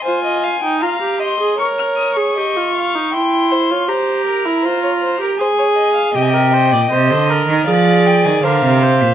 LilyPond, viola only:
\new Staff \with { instrumentName = "Viola" } { \time 4/4 \key f \minor \tempo 4 = 79 f'8. ees'16 f'16 g'8 aes'16 bes'8. aes'16 g'16 f'8 ees'16 | e'8. f'16 g'8. e'16 f'8. g'16 aes'4 | g'16 bes'16 c''16 d''16 c''8 bes'8 aes'4 bes'8 c''8 | }